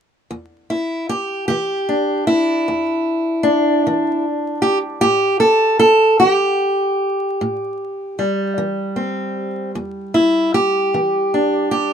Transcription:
0.31 E2
0.70 E4
1.09 G4
1.48 E3 G4
1.89 D4
2.27 E4
2.68 E2
3.43 D4
3.87 E3
4.62 G4
5.01 A2 G4
5.40 A4
5.79 A4
6.20 E3 G4
7.41 A2
8.19 G3
8.58 E3
8.96 C4
9.75 E2
10.14 E4
10.54 G4
10.94 E3
11.34 D4
11.71 G4

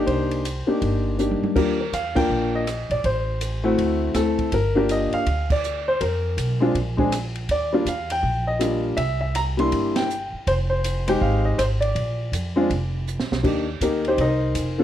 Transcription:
Already playing: A#3 D4 D#4 G4
0.07 C2 C5, kick, ride
0.31 ride
0.45 hi-hat pedal, ride
0.67 A#3 D4 D#4 G4, muted upright bass stroke
0.82 G1, kick, ride
1.18 A#3 D4 D#4 G4, hi-hat pedal
1.31 high tom
1.41 muted upright bass stroke, high tom
1.55 D#2 A#3 D4 F4 G4 A#4, kick, crash
1.80 A#4
1.93 E2 F5, hi-hat pedal, ride
2.15 A#3 D4 F4 A#4 G5, kick, crash
2.29 A#1
2.55 D#5
2.67 cross-stick, hi-hat pedal, ride
2.90 A#1 D5, ride
3.04 A1 C5, kick, ride
3.41 hi-hat pedal, ride
3.64 A3 C4 E4 F#4
3.78 D2, kick, ride
4.14 D2 A3 C4 E4 A4, cross-stick, snare, hi-hat pedal, ride
4.39 kick, ride
4.52 G1 A#4, kick, ride
4.75 A#3 D4 F4 G4 A#4
4.89 D#5, hi-hat pedal, ride
5.12 F5, muted upright bass stroke, ride
5.26 D2, kick, ride
5.50 D5, kick, crash
5.64 hi-hat pedal
5.88 C5
6.01 F2 A#4, kick, ride
6.37 B1, hi-hat pedal, ride
6.60 G#3 C4 D4 F4
6.75 A#1, kick, ride
6.97 G#3 C4 D4 G#4, kick
7.12 cross-stick, hi-hat pedal, ride
7.35 ride
7.49 D#2 D5, kick, ride
7.73 G3 A#3 D4 F4 D5
7.85 E2 F5, hi-hat pedal, ride
8.10 G5, ride
8.23 A#1, kick
8.47 D#5
8.59 G3 A#3 D4 F4, cross-stick, hi-hat pedal, ride
8.97 C2 E5, kick, ride
9.21 E5
9.35 A#5, hi-hat pedal, ride
9.57 G3 A#3 D4 E4 C6, ride
9.72 G1, kick, ride
9.96 G5, snare, ride
10.10 hi-hat pedal
10.33 muted upright bass stroke
10.47 F1 C5, kick, ride
10.70 C5
10.84 hi-hat pedal, ride
11.08 G#3 C4 D#4 G4 G5, ride
11.21 G#1 F5, kick
11.45 D#5
11.58 G#1 C5, cross-stick, hi-hat pedal, ride
11.81 D5, ride
11.95 A#1, kick, ride
12.32 F2, hi-hat pedal, ride
12.56 G#3 C4 D4 F4
12.70 F1, kick, ride
13.07 hi-hat pedal
13.19 A#1, snare
13.32 B1, snare
13.43 D#2 A#3 D4 D#4 G4, kick, crash
13.81 D2 A#3 D#4 G4 A#4, kick, hi-hat pedal, ride
14.05 C5, ride
14.09 C4 D#4 G4
14.18 C2 D#4 A#4 D#5, kick, ride
14.22 C5
14.55 F1, kick, hi-hat pedal, ride
14.78 A#3 D4 F4 A4

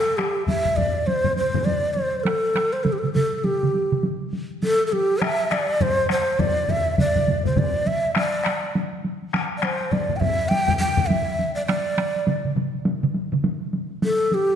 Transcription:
Already playing: A4
0.17 G4, taiko rim, taiko high
0.47 E5, taiko low-mid, taiko high
0.65 taiko low-mid, taiko high
0.76 D5, taiko low-mid, taiko high
0.96 taiko high
1.07 C5, taiko high
1.24 taiko low-mid, taiko high
1.37 C5, taiko high
1.54 taiko low-mid, taiko high
1.65 D5, taiko high
1.84 taiko high
1.94 C5, taiko high
2.14 taiko high
2.20 C5
2.24 A4, taiko rim, taiko high
2.55 taiko rim, taiko high
2.73 C5, taiko high
2.84 A4, taiko mid, taiko high
2.93 G4
2.99 A4
3.03 taiko mid, taiko high
3.14 A4, taiko mid, taiko high
3.33 taiko high
3.38 A4
3.44 G4, taiko high
3.63 taiko mid, taiko high
3.74 taiko high
3.92 taiko mid, taiko high
4.03 taiko high
4.21 taiko high
4.33 taiko high
4.51 taiko high
4.63 A4, taiko high
4.87 A4
4.93 G4, taiko high
5.11 taiko high
5.22 E5, taiko rim, taiko high
5.40 taiko high
5.51 D5, taiko rim, taiko high
5.70 taiko high
5.80 C5, taiko low-mid, taiko high
5.99 taiko high
6.09 C5, taiko rim, taiko high
6.28 taiko high
6.39 D5, taiko low-mid, taiko high
6.58 taiko high
6.69 E5, taiko low-mid, taiko high
6.87 taiko high
6.98 D5, taiko low-mid, taiko mid, taiko high
7.16 taiko low-mid, taiko mid, taiko high
7.27 taiko low-mid, taiko mid, taiko high
7.45 C5, taiko low-mid, taiko mid, taiko high
7.57 D5, taiko low-mid, taiko mid, taiko high
7.74 taiko high
7.86 E5, taiko high
8.05 taiko high
8.15 taiko rim, taiko high
8.17 D5, taiko rim
8.34 taiko high
8.45 taiko rim
8.46 taiko rim, taiko high
8.64 taiko high
8.75 taiko high
8.93 taiko high
9.04 taiko high
9.22 taiko high
9.33 taiko rim, taiko high
9.58 D5
9.62 C5, taiko rim, taiko high
9.81 taiko high
9.91 D5, taiko low-mid, taiko high
10.10 taiko low-mid, taiko high
10.16 E5 G5
10.21 taiko low-mid, taiko high
10.40 taiko high
10.49 G5, taiko high
10.68 taiko low-mid
10.78 G5, taiko high
10.97 taiko low-mid
11.06 E5, taiko high
11.28 taiko high
11.39 taiko high
11.55 D5, taiko high
11.66 D5, taiko rim, taiko high
11.98 taiko rim, taiko high
12.16 taiko high
12.27 taiko mid, taiko high
12.45 taiko mid, taiko high
12.56 taiko mid, taiko high
12.74 taiko high
12.85 taiko high
13.03 taiko mid, taiko high
13.14 taiko high
13.32 taiko mid, taiko high
13.44 taiko high
13.62 taiko high
13.73 taiko high
13.91 taiko high
14.02 A4, taiko high
14.32 G4, taiko high
14.50 taiko high

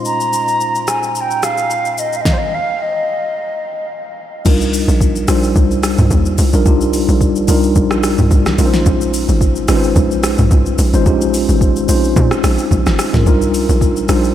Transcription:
Already playing: A#2 G#3 C#4 D#4 F4 C5
0.05 A#5, shaker
0.20 shaker
0.33 shaker
0.48 shaker
0.61 shaker
0.75 shaker
0.88 G#5, cross-stick, shaker
1.03 shaker
1.15 A#5, shaker
1.21 G5
1.31 shaker
1.43 F5, cross-stick, shaker
1.58 shaker
1.71 shaker
1.85 shaker
1.98 D#5, shaker
2.13 F5, shaker
2.21 D#5
2.25 kick, snare
2.33 C5
2.38 D#5
2.54 F5
2.82 D#5
4.45 C2 G3 D4 D#4 F4 A#4, kick, crash, shaker
4.61 shaker
4.74 open hi-hat, shaker
4.88 A#1, shaker
5.01 kick, shaker
5.16 shaker
5.28 A#1 G3 D4 D#4 F4 C5, cross-stick, open hi-hat, shaker
5.43 shaker
5.56 C2, kick, shaker
5.71 shaker
5.83 cross-stick, open hi-hat, shaker
5.98 C2, mid tom, shaker
6.11 D#2, kick, shaker
6.25 shaker
6.38 C2, open hi-hat, shaker
6.53 A#1 G3 D4 D#4 F4 A#4, shaker
6.65 C2 G3 D4 D#4 F4 G4, kick, shaker
6.81 shaker
6.93 open hi-hat, shaker
7.09 A#1, shaker
7.21 kick, shaker
7.36 shaker
7.48 C2 G3 D4 D#4 F4 A#4, open hi-hat, shaker
7.63 shaker
7.76 A#1, kick, shaker
7.91 cross-stick, shaker
8.03 cross-stick, open hi-hat, shaker
8.18 C2, mid tom, shaker
8.31 C2, kick, shaker
8.46 cross-stick, snare, shaker
8.58 A#1 G#3 C#4 D#4 F4 A#4, open hi-hat, shaker
8.66 C5
8.74 snare, shaker
8.86 A#1, kick, shaker
9.01 shaker
9.14 open hi-hat, shaker
9.29 G#1, shaker
9.41 kick, shaker
9.56 shaker
9.68 G#1 G#3 C#4 D#4 F4 B4, cross-stick, open hi-hat, shaker
9.76 C5
9.83 shaker
9.96 A#1, kick, shaker
10.11 shaker
10.23 cross-stick, open hi-hat, shaker
10.38 A#1, mid tom, shaker
10.51 C2, kick, shaker
10.66 shaker
10.79 A#1, open hi-hat, shaker
10.93 G#1 G#3 C#4 D#4 F4 C5, shaker
11.05 A#1 G#3 C#4 D#4 F4 G4, kick, shaker
11.21 shaker
11.34 open hi-hat, shaker
11.49 G#1, shaker
11.61 kick, shaker
11.76 shaker
11.88 A#1 G#3 C4 D#4 F4 C5, open hi-hat, shaker
11.95 C#4
12.04 shaker
12.16 A#2, kick, shaker
12.31 cross-stick, shaker
12.44 A#1, cross-stick, open hi-hat, shaker
12.59 shaker
12.71 A#1, kick, shaker
12.86 G#1, cross-stick, snare, shaker
12.99 cross-stick, open hi-hat, shaker
13.13 A#1 G#3 C#4 D#4 F4 A#4, snare, mid tom, shaker
13.26 C2 G3 D4 D#4 F4 A#4, kick, shaker
13.42 shaker
13.54 open hi-hat, shaker
13.69 A#1, shaker
13.81 kick, shaker
13.96 shaker
14.08 A#1 G3 D4 D#4 F4 C5, cross-stick, open hi-hat, shaker
14.24 shaker

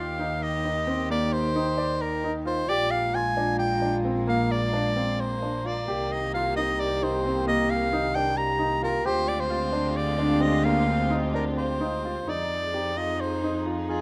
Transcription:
Already playing: D#2 D#3 D#4 F4 G4 F5
0.20 D#4
0.43 D#5
0.65 D#4
0.87 C4
1.10 A#3 D5
1.32 C5
1.56 D#4
1.78 D5
2.01 A#4
2.24 D#4
2.45 F4 C5
2.67 A#1 G#3 A#3 F4 G4 D5
2.91 F5
3.14 F4 G#5
3.37 D4
3.59 G5
3.82 D4
4.05 C4
4.27 A#3 F5
4.51 D5
4.73 D4
4.96 C4
5.20 C5
5.42 D4
5.65 F4 D5
5.86 C2 C3 D#3 G4
6.12 D#5
6.34 F4 F5
6.56 D#4 D#5
6.80 D5
7.02 D#4 C5
7.26 C4
7.47 A#3 D#5
7.70 F5
7.93 D#4
8.15 D4 G5
8.37 G4 A#5
8.59 D#4
8.83 F4 A#4
9.04 D2 D3 G#3 C4 F4 G4 C5
9.28 D5
9.40 C5
9.50 F4
9.72 D4
9.96 D5
10.18 D4
10.40 C4 D#5
10.64 A#3 F5
10.88 C4
11.10 D#4
11.34 D4 A#4
11.57 C5
11.81 D#4
12.05 F4
12.26 F2 F3 D#4 G#4 D5
12.74 C4 G4
12.96 D#4 F4 D#5
13.21 C5
13.43 D#4
13.66 F4
13.89 F4 G#4

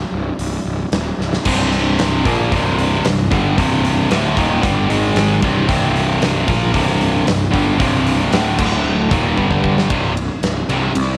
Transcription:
0.12 C1
0.39 C1, open hi-hat
0.66 C1
0.92 D#1, snare, open hi-hat
1.19 C1, snare
1.33 snare
1.45 C1 C2 G2 C3, kick, crash
1.72 open hi-hat
1.99 snare, open hi-hat
2.25 A#1 A#2 F3 A#3, kick, open hi-hat
2.52 C1 C2 G2 C3, kick, open hi-hat
2.79 open hi-hat
3.05 C1 C2 G2, snare, open hi-hat
3.31 G1 G2 D3 G3, kick, open hi-hat
3.57 C1 C2 G2 C3, kick, open hi-hat
3.85 open hi-hat
4.10 D1 D2 A2 D3, snare, open hi-hat
4.37 D#1 D#2 A#2 D#3, kick, open hi-hat
4.62 G1 G2 D3 G3, kick, open hi-hat
4.89 G#1 G#2 D#3 G#3, open hi-hat
5.16 snare, open hi-hat
5.42 C1 C2 G2 C3, kick, open hi-hat
5.68 C1 C2 G2 C3, kick, open hi-hat
5.96 open hi-hat
6.22 snare, open hi-hat
6.47 A#1 A#2 F3 A#3, kick, open hi-hat
6.73 C1 C2 G2 C3, kick, open hi-hat
7.01 open hi-hat
7.26 C1 C2 G2, snare, open hi-hat
7.51 G1 G2 D3 G3, kick, open hi-hat
7.79 C1 C2 G2 C3, kick, open hi-hat
8.06 open hi-hat
8.32 D1 D2 A2 D3, snare, open hi-hat
8.58 D1 D2 A2 D3, kick, crash
9.10 D#1 D#2 A#2 D#3, kick, open hi-hat
9.37 G1 G2 D3 G3, kick
9.51 kick
9.64 kick
9.78 snare
9.89 C1 C2 G2 C3, kick, ride
10.17 ride
10.43 C1, snare, ride
10.69 C2 G2 C3, snare, ride
10.95 C2, ride

